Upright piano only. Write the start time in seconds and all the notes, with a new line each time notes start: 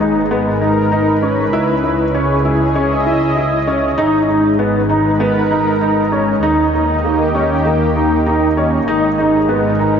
0.00 D#4
0.31 B3
0.61 D#4
0.92 D#4
1.22 C#4
1.53 E4
1.83 E4
2.15 C#4
2.45 E4
2.75 C#4
3.06 E4
3.37 E4
3.67 C#4
3.98 D#4
4.28 D#4
4.59 B3
4.89 D#4
5.20 B3
5.51 D#4
5.81 D#4
6.12 C#4
6.43 D#4
6.73 D#4
7.04 A#3
7.35 C#4
7.65 A#3
7.96 D#4
8.26 D#4
8.57 C#4
8.88 D#4
9.18 D#4
9.49 B3
9.79 D#4